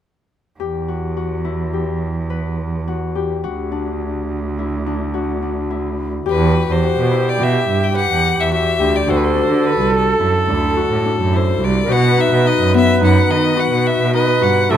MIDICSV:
0, 0, Header, 1, 5, 480
1, 0, Start_track
1, 0, Key_signature, 1, "minor"
1, 0, Tempo, 566038
1, 516, Time_signature, 5, 2, 24, 8
1, 5315, Tempo, 562324
1, 12573, End_track
2, 0, Start_track
2, 0, Title_t, "Violin"
2, 0, Program_c, 0, 40
2, 5339, Note_on_c, 0, 71, 70
2, 5701, Note_on_c, 0, 72, 72
2, 5714, Note_off_c, 0, 71, 0
2, 6191, Note_on_c, 0, 74, 76
2, 6203, Note_off_c, 0, 72, 0
2, 6308, Note_on_c, 0, 76, 67
2, 6321, Note_off_c, 0, 74, 0
2, 6653, Note_on_c, 0, 79, 73
2, 6665, Note_off_c, 0, 76, 0
2, 6760, Note_off_c, 0, 79, 0
2, 6765, Note_on_c, 0, 78, 84
2, 7137, Note_on_c, 0, 76, 76
2, 7150, Note_off_c, 0, 78, 0
2, 7244, Note_off_c, 0, 76, 0
2, 7249, Note_on_c, 0, 76, 75
2, 7610, Note_on_c, 0, 74, 67
2, 7623, Note_off_c, 0, 76, 0
2, 7733, Note_on_c, 0, 72, 67
2, 7746, Note_off_c, 0, 74, 0
2, 7788, Note_on_c, 0, 71, 58
2, 7801, Note_off_c, 0, 72, 0
2, 7855, Note_on_c, 0, 72, 68
2, 7867, Note_off_c, 0, 71, 0
2, 8205, Note_on_c, 0, 71, 78
2, 8218, Note_off_c, 0, 72, 0
2, 8441, Note_off_c, 0, 71, 0
2, 8468, Note_on_c, 0, 69, 69
2, 9660, Note_on_c, 0, 72, 62
2, 9673, Note_off_c, 0, 69, 0
2, 9905, Note_on_c, 0, 74, 69
2, 9917, Note_off_c, 0, 72, 0
2, 10137, Note_on_c, 0, 78, 79
2, 10150, Note_off_c, 0, 74, 0
2, 10384, Note_on_c, 0, 76, 70
2, 10397, Note_off_c, 0, 78, 0
2, 10608, Note_on_c, 0, 75, 77
2, 10621, Note_off_c, 0, 76, 0
2, 10841, Note_off_c, 0, 75, 0
2, 10854, Note_on_c, 0, 76, 79
2, 11068, Note_off_c, 0, 76, 0
2, 11098, Note_on_c, 0, 78, 68
2, 11322, Note_on_c, 0, 75, 74
2, 11335, Note_off_c, 0, 78, 0
2, 11572, Note_on_c, 0, 78, 71
2, 11585, Note_off_c, 0, 75, 0
2, 11803, Note_on_c, 0, 76, 72
2, 11816, Note_off_c, 0, 78, 0
2, 12037, Note_off_c, 0, 76, 0
2, 12043, Note_on_c, 0, 75, 71
2, 12282, Note_on_c, 0, 78, 68
2, 12294, Note_off_c, 0, 75, 0
2, 12515, Note_on_c, 0, 76, 65
2, 12528, Note_off_c, 0, 78, 0
2, 12573, Note_off_c, 0, 76, 0
2, 12573, End_track
3, 0, Start_track
3, 0, Title_t, "Bansuri"
3, 0, Program_c, 1, 73
3, 5315, Note_on_c, 1, 67, 69
3, 7722, Note_on_c, 1, 69, 86
3, 7735, Note_off_c, 1, 67, 0
3, 9889, Note_off_c, 1, 69, 0
3, 10065, Note_on_c, 1, 70, 67
3, 10116, Note_on_c, 1, 72, 81
3, 10129, Note_off_c, 1, 70, 0
3, 10158, Note_on_c, 1, 71, 88
3, 10166, Note_off_c, 1, 72, 0
3, 12025, Note_off_c, 1, 71, 0
3, 12030, Note_on_c, 1, 71, 96
3, 12516, Note_on_c, 1, 69, 81
3, 12529, Note_off_c, 1, 71, 0
3, 12573, Note_off_c, 1, 69, 0
3, 12573, End_track
4, 0, Start_track
4, 0, Title_t, "Harp"
4, 0, Program_c, 2, 46
4, 507, Note_on_c, 2, 67, 60
4, 748, Note_on_c, 2, 66, 41
4, 799, Note_off_c, 2, 67, 0
4, 986, Note_off_c, 2, 66, 0
4, 990, Note_on_c, 2, 66, 40
4, 1225, Note_on_c, 2, 64, 51
4, 1469, Note_on_c, 2, 67, 41
4, 1520, Note_off_c, 2, 66, 0
4, 1950, Note_on_c, 2, 71, 57
4, 2439, Note_on_c, 2, 66, 58
4, 2490, Note_off_c, 2, 67, 0
4, 2674, Note_on_c, 2, 67, 51
4, 2725, Note_off_c, 2, 66, 0
4, 2914, Note_on_c, 2, 66, 61
4, 2965, Note_off_c, 2, 67, 0
4, 3151, Note_on_c, 2, 62, 49
4, 3440, Note_off_c, 2, 64, 0
4, 3688, Note_off_c, 2, 71, 0
4, 3888, Note_on_c, 2, 64, 40
4, 4121, Note_off_c, 2, 62, 0
4, 4124, Note_on_c, 2, 62, 53
4, 4354, Note_off_c, 2, 66, 0
4, 4357, Note_on_c, 2, 66, 62
4, 4595, Note_off_c, 2, 62, 0
4, 4599, Note_on_c, 2, 62, 46
4, 4834, Note_off_c, 2, 64, 0
4, 4837, Note_on_c, 2, 64, 53
4, 5306, Note_on_c, 2, 67, 73
4, 5357, Note_off_c, 2, 66, 0
4, 5557, Note_on_c, 2, 66, 43
4, 5609, Note_off_c, 2, 67, 0
4, 5796, Note_off_c, 2, 66, 0
4, 5799, Note_on_c, 2, 66, 51
4, 6032, Note_off_c, 2, 64, 0
4, 6035, Note_on_c, 2, 64, 61
4, 6272, Note_on_c, 2, 67, 46
4, 6323, Note_off_c, 2, 66, 0
4, 6744, Note_on_c, 2, 71, 58
4, 6983, Note_off_c, 2, 62, 0
4, 7233, Note_on_c, 2, 66, 58
4, 7284, Note_off_c, 2, 67, 0
4, 7470, Note_on_c, 2, 67, 60
4, 7521, Note_off_c, 2, 66, 0
4, 7710, Note_on_c, 2, 66, 76
4, 7761, Note_off_c, 2, 67, 0
4, 7957, Note_on_c, 2, 62, 56
4, 8265, Note_off_c, 2, 64, 0
4, 8493, Note_off_c, 2, 71, 0
4, 8675, Note_on_c, 2, 64, 59
4, 8907, Note_off_c, 2, 62, 0
4, 8910, Note_on_c, 2, 62, 53
4, 9151, Note_off_c, 2, 66, 0
4, 9154, Note_on_c, 2, 66, 60
4, 9396, Note_off_c, 2, 62, 0
4, 9400, Note_on_c, 2, 62, 52
4, 9634, Note_off_c, 2, 64, 0
4, 9638, Note_on_c, 2, 64, 67
4, 10110, Note_off_c, 2, 66, 0
4, 10114, Note_on_c, 2, 66, 71
4, 10357, Note_on_c, 2, 63, 55
4, 10409, Note_off_c, 2, 62, 0
4, 10409, Note_off_c, 2, 64, 0
4, 10588, Note_off_c, 2, 63, 0
4, 10591, Note_on_c, 2, 63, 58
4, 10840, Note_on_c, 2, 59, 60
4, 11063, Note_off_c, 2, 63, 0
4, 11067, Note_on_c, 2, 63, 57
4, 11541, Note_off_c, 2, 66, 0
4, 11544, Note_on_c, 2, 66, 70
4, 12029, Note_off_c, 2, 63, 0
4, 12033, Note_on_c, 2, 63, 66
4, 12264, Note_off_c, 2, 66, 0
4, 12267, Note_on_c, 2, 66, 61
4, 12506, Note_on_c, 2, 64, 72
4, 12557, Note_off_c, 2, 63, 0
4, 12573, Note_off_c, 2, 59, 0
4, 12573, Note_off_c, 2, 64, 0
4, 12573, Note_off_c, 2, 66, 0
4, 12573, End_track
5, 0, Start_track
5, 0, Title_t, "Cello"
5, 0, Program_c, 3, 42
5, 507, Note_on_c, 3, 40, 60
5, 2917, Note_on_c, 3, 38, 64
5, 2930, Note_off_c, 3, 40, 0
5, 5279, Note_off_c, 3, 38, 0
5, 5319, Note_on_c, 3, 40, 95
5, 5650, Note_off_c, 3, 40, 0
5, 5675, Note_on_c, 3, 40, 68
5, 5897, Note_off_c, 3, 40, 0
5, 5927, Note_on_c, 3, 47, 63
5, 6144, Note_off_c, 3, 47, 0
5, 6269, Note_on_c, 3, 47, 77
5, 6494, Note_off_c, 3, 47, 0
5, 6521, Note_on_c, 3, 43, 64
5, 6851, Note_off_c, 3, 43, 0
5, 6877, Note_on_c, 3, 40, 62
5, 7098, Note_off_c, 3, 40, 0
5, 7119, Note_on_c, 3, 40, 69
5, 7339, Note_off_c, 3, 40, 0
5, 7482, Note_on_c, 3, 38, 73
5, 7590, Note_off_c, 3, 38, 0
5, 7707, Note_on_c, 3, 38, 82
5, 8043, Note_off_c, 3, 38, 0
5, 8081, Note_on_c, 3, 50, 63
5, 8300, Note_off_c, 3, 50, 0
5, 8318, Note_on_c, 3, 36, 67
5, 8650, Note_off_c, 3, 36, 0
5, 8672, Note_on_c, 3, 42, 73
5, 8785, Note_off_c, 3, 42, 0
5, 8911, Note_on_c, 3, 38, 64
5, 9245, Note_off_c, 3, 38, 0
5, 9270, Note_on_c, 3, 45, 69
5, 9384, Note_off_c, 3, 45, 0
5, 9509, Note_on_c, 3, 42, 69
5, 9844, Note_off_c, 3, 42, 0
5, 9866, Note_on_c, 3, 36, 86
5, 10091, Note_off_c, 3, 36, 0
5, 10110, Note_on_c, 3, 47, 86
5, 10444, Note_off_c, 3, 47, 0
5, 10477, Note_on_c, 3, 47, 67
5, 10697, Note_off_c, 3, 47, 0
5, 10717, Note_on_c, 3, 42, 73
5, 10937, Note_off_c, 3, 42, 0
5, 11076, Note_on_c, 3, 42, 93
5, 11296, Note_off_c, 3, 42, 0
5, 11311, Note_on_c, 3, 51, 65
5, 11644, Note_off_c, 3, 51, 0
5, 11669, Note_on_c, 3, 47, 65
5, 11892, Note_off_c, 3, 47, 0
5, 11913, Note_on_c, 3, 47, 69
5, 12134, Note_off_c, 3, 47, 0
5, 12274, Note_on_c, 3, 43, 75
5, 12383, Note_off_c, 3, 43, 0
5, 12518, Note_on_c, 3, 48, 101
5, 12573, Note_off_c, 3, 48, 0
5, 12573, End_track
0, 0, End_of_file